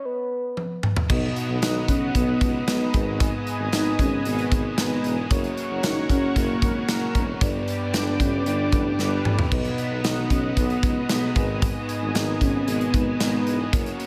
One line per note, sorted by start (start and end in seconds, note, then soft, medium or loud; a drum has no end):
0.05 0.84 B4 medium
0.57 high tom medium
0.83 mid tom medium
0.96 floor tom loud
1.09 1.29 B1 loud
1.09 2.13 B2 loud
1.09 1.85 B2 medium
1.09 2.15 F#3 loud
1.09 1.41 B3 medium
1.09 1.42 D#4 medium
1.09 1.42 F#4 medium
1.09 2.92 B4 medium
1.09 1.42 B4 medium
1.09 5.27 D#5 medium
1.09 1.42 D#5 loud
1.09 2.92 F#5 medium
1.09 5.27 D#6 medium
1.09 kick loud
1.09 crash loud
1.13 2.17 B3 loud
1.36 closed hi-hat medium
1.49 1.59 B1 medium
1.62 1.81 B1 loud
1.62 2.26 B3 medium
1.62 2.26 D#4 medium
1.62 1.91 D#4 loud
1.62 2.26 F#4 medium
1.62 2.26 B4 medium
1.62 2.26 D#5 medium
1.62 snare loud
1.62 closed hi-hat medium
1.62 tambourine medium
1.88 2.07 B1 medium
1.88 2.15 C#4 loud
1.88 kick medium
1.88 closed hi-hat medium
2.14 2.34 B1 loud
2.14 2.66 B2 medium
2.14 2.67 F#3 medium
2.14 2.64 B3 loud
2.14 2.69 B3 medium
2.14 kick medium
2.14 closed hi-hat medium
2.41 2.60 C#2 medium
2.41 2.53 F#3 medium
2.41 2.53 D#4 medium
2.41 2.53 B4 loud
2.41 kick loud
2.41 closed hi-hat medium
2.67 2.87 B1 loud
2.67 2.94 B2 medium
2.67 2.92 F#3 medium
2.67 3.05 G#3 loud
2.67 3.05 B3 medium
2.67 2.95 B3 medium
2.67 3.05 D#4 loud
2.67 3.05 B4 loud
2.67 snare loud
2.67 closed hi-hat medium
2.67 tambourine medium
2.93 3.32 G#1 loud
2.93 3.69 G#2 medium
2.93 4.25 D#3 medium
2.93 4.25 G#3 medium
2.93 3.57 B3 medium
2.93 3.57 D#4 medium
2.93 3.57 G#4 medium
2.93 5.29 B4 medium
2.93 3.57 B4 medium
2.93 3.58 D#5 medium
2.93 5.28 G#5 medium
2.93 kick loud
2.93 closed hi-hat medium
2.97 4.24 G#2 medium
3.20 kick loud
3.20 closed hi-hat medium
3.47 closed hi-hat medium
3.60 3.69 G#1 medium
3.73 3.92 G#1 loud
3.73 4.37 B3 medium
3.73 4.37 D#4 medium
3.73 4.02 D#4 loud
3.73 4.37 G#4 medium
3.73 4.37 B4 medium
3.73 4.37 D#5 medium
3.73 snare loud
3.73 closed hi-hat medium
3.73 tambourine medium
3.99 4.18 G#1 loud
3.99 4.26 C#4 loud
3.99 kick medium
3.99 closed hi-hat medium
4.25 4.44 G#1 loud
4.25 4.76 G#2 medium
4.25 4.78 D#3 medium
4.25 4.79 G#3 medium
4.25 4.75 B3 loud
4.25 closed hi-hat medium
4.39 closed hi-hat soft
4.51 4.71 G#1 medium
4.51 4.63 G#3 medium
4.51 4.63 D#4 loud
4.51 4.63 B4 loud
4.51 kick loud
4.51 closed hi-hat medium
4.77 4.97 G#1 loud
4.77 5.29 G#2 medium
4.77 5.31 D#3 medium
4.77 5.16 G#3 loud
4.77 5.32 G#3 medium
4.77 5.15 B3 medium
4.77 5.16 D#4 loud
4.77 5.16 B4 loud
4.77 snare loud
4.77 closed hi-hat loud
4.77 tambourine medium
5.04 5.23 E1 loud
5.04 closed hi-hat medium
5.30 5.50 F#1 loud
5.30 6.34 F#2 medium
5.30 6.36 C#3 loud
5.30 5.62 A#3 medium
5.30 5.62 C#4 medium
5.30 5.63 F#4 medium
5.30 7.39 A#4 medium
5.30 5.63 A#4 medium
5.30 7.39 C#5 medium
5.30 5.63 C#5 loud
5.30 7.39 F#5 medium
5.30 7.39 C#6 medium
5.30 kick loud
5.30 closed hi-hat medium
5.34 6.37 F#3 loud
5.44 closed hi-hat medium
5.57 closed hi-hat medium
5.70 5.80 F#1 medium
5.83 6.02 F#1 loud
5.83 6.47 A#3 medium
5.83 6.47 C#4 medium
5.83 6.09 D#4 loud
5.83 6.47 F#4 medium
5.83 6.47 A#4 medium
5.83 6.47 C#5 medium
5.83 snare loud
5.83 closed hi-hat loud
5.83 tambourine medium
6.09 6.28 F#1 loud
6.09 6.39 C#4 loud
6.09 kick medium
6.09 closed hi-hat medium
6.35 6.55 F#1 loud
6.35 6.87 F#2 medium
6.35 6.88 C#3 medium
6.35 6.90 F#3 medium
6.35 6.89 A#3 loud
6.35 kick medium
6.35 closed hi-hat medium
6.62 6.81 G#1 medium
6.62 6.74 F#3 loud
6.62 6.74 C#4 loud
6.62 6.74 A#4 loud
6.62 kick loud
6.62 closed hi-hat medium
6.88 7.08 F#1 loud
6.88 7.40 F#2 medium
6.88 7.41 C#3 medium
6.88 7.26 F#3 loud
6.88 7.42 F#3 medium
6.88 7.26 A#3 medium
6.88 7.26 C#4 loud
6.88 7.26 A#4 loud
6.88 snare loud
6.88 closed hi-hat loud
6.88 tambourine medium
7.15 7.34 E1 loud
7.15 kick loud
7.15 closed hi-hat medium
7.41 7.60 G1 loud
7.41 7.67 G2 medium
7.41 8.16 G2 medium
7.41 7.68 D3 loud
7.41 7.66 G3 loud
7.41 7.73 B3 medium
7.41 7.73 D4 medium
7.41 7.73 G4 medium
7.41 13.69 B4 medium
7.41 7.73 B4 medium
7.41 9.50 D5 medium
7.41 7.74 D5 loud
7.41 9.49 G5 medium
7.41 9.49 D6 medium
7.41 kick loud
7.41 closed hi-hat medium
7.67 8.46 D3 medium
7.67 8.46 G3 medium
7.67 closed hi-hat medium
7.93 8.13 G1 loud
7.93 8.57 B3 medium
7.93 8.57 D4 medium
7.93 8.23 D4 loud
7.93 8.58 G4 medium
7.93 8.58 B4 medium
7.93 8.58 D5 medium
7.93 snare loud
7.93 closed hi-hat medium
7.93 tambourine medium
8.20 8.39 G1 loud
8.20 8.49 C#4 loud
8.20 kick medium
8.20 closed hi-hat medium
8.46 8.65 G1 loud
8.46 8.97 G2 medium
8.46 8.99 D3 medium
8.46 9.00 G3 medium
8.46 9.26 D4 loud
8.46 closed hi-hat medium
8.72 8.92 A1 medium
8.72 8.84 G3 loud
8.72 8.84 D4 loud
8.72 8.84 B4 loud
8.72 kick loud
8.72 closed hi-hat medium
8.98 9.18 G1 loud
8.98 9.51 G2 medium
8.98 9.51 D3 medium
8.98 9.37 G3 loud
8.98 9.52 G3 medium
8.98 9.37 D4 loud
8.98 9.37 B4 loud
8.98 snare medium
9.25 9.44 A1 medium
9.25 mid tom loud
9.39 floor tom loud
9.51 9.71 B1 loud
9.51 9.78 B2 medium
9.51 10.27 B2 medium
9.51 9.78 F#3 medium
9.51 9.84 B3 medium
9.51 9.76 B3 loud
9.51 9.84 D#4 medium
9.51 9.84 F#4 medium
9.51 9.84 B4 medium
9.51 13.69 D#5 medium
9.51 9.84 D#5 medium
9.51 11.34 F#5 medium
9.51 13.68 D#6 medium
9.51 kick loud
9.51 crash medium
9.65 closed hi-hat medium
9.77 10.57 F#3 soft
9.77 10.59 B3 medium
9.77 closed hi-hat medium
9.91 10.01 B1 medium
10.04 10.23 B1 loud
10.04 10.68 B3 medium
10.04 10.68 D#4 medium
10.04 10.33 D#4 loud
10.04 10.68 F#4 medium
10.04 10.68 B4 medium
10.04 10.69 D#5 medium
10.04 snare loud
10.04 closed hi-hat medium
10.04 tambourine medium
10.30 10.49 B1 loud
10.30 10.60 C#4 loud
10.30 kick medium
10.30 closed hi-hat medium
10.56 10.76 B1 loud
10.56 11.07 B2 medium
10.56 11.09 F#3 medium
10.56 11.10 B3 loud
10.56 11.11 B3 medium
10.56 kick medium
10.56 closed hi-hat medium
10.70 closed hi-hat soft
10.83 11.02 C#2 medium
10.83 10.95 F#3 medium
10.83 10.95 D#4 loud
10.83 10.95 B4 loud
10.83 kick loud
10.83 closed hi-hat medium
11.08 11.29 B1 loud
11.08 11.35 B2 medium
11.08 11.34 F#3 medium
11.08 11.47 G#3 loud
11.08 11.47 B3 medium
11.08 11.37 B3 medium
11.08 11.47 D#4 loud
11.08 11.47 B4 loud
11.08 snare loud
11.08 closed hi-hat loud
11.08 tambourine medium
11.34 11.74 G#1 loud
11.34 12.11 G#2 medium
11.34 12.68 D#3 medium
11.34 12.67 G#3 medium
11.34 11.99 B3 medium
11.34 11.99 D#4 medium
11.34 11.99 G#4 medium
11.34 11.99 B4 medium
11.34 11.99 D#5 medium
11.34 13.71 G#5 medium
11.34 kick loud
11.34 closed hi-hat medium
11.39 12.66 G#2 medium
11.62 kick loud
11.62 closed hi-hat loud
11.89 closed hi-hat medium
12.02 12.11 G#1 loud
12.14 12.34 G#1 loud
12.14 12.78 B3 medium
12.14 12.78 D#4 medium
12.14 12.43 D#4 loud
12.14 12.79 G#4 medium
12.14 12.79 B4 medium
12.14 12.79 D#5 medium
12.14 snare loud
12.14 closed hi-hat medium
12.14 tambourine medium
12.41 12.60 G#1 loud
12.41 12.70 C#4 loud
12.41 kick medium
12.41 closed hi-hat medium
12.67 12.86 G#1 loud
12.67 13.18 G#2 medium
12.67 13.20 D#3 medium
12.67 13.21 G#3 medium
12.67 13.20 B3 loud
12.67 closed hi-hat medium
12.81 closed hi-hat medium
12.94 13.13 G#1 loud
12.94 13.05 G#3 loud
12.94 13.05 D#4 loud
12.94 13.05 B4 loud
12.94 kick loud
12.94 closed hi-hat medium
13.19 13.39 G#1 loud
13.19 13.72 G#2 medium
13.19 13.73 D#3 medium
13.19 13.58 G#3 loud
13.19 13.74 G#3 medium
13.19 13.57 B3 medium
13.19 13.58 D#4 loud
13.19 13.58 B4 loud
13.19 snare loud
13.19 closed hi-hat loud
13.19 tambourine medium
13.46 13.65 E1 medium
13.46 closed hi-hat medium
13.72 13.92 F#1 loud
13.72 13.99 F#2 medium
13.72 14.00 C#3 loud
13.72 13.98 F#3 loud
13.72 14.04 A#3 medium
13.72 14.05 C#4 medium
13.72 14.05 F#4 medium
13.72 14.05 A#4 medium
13.72 14.06 A#4 medium
13.72 14.06 C#5 medium
13.72 14.05 C#5 loud
13.72 14.06 F#5 medium
13.72 14.06 C#6 medium
13.72 kick loud
13.72 closed hi-hat medium
13.86 closed hi-hat medium
13.99 14.06 C#3 medium
13.99 14.06 F#3 medium
13.99 closed hi-hat medium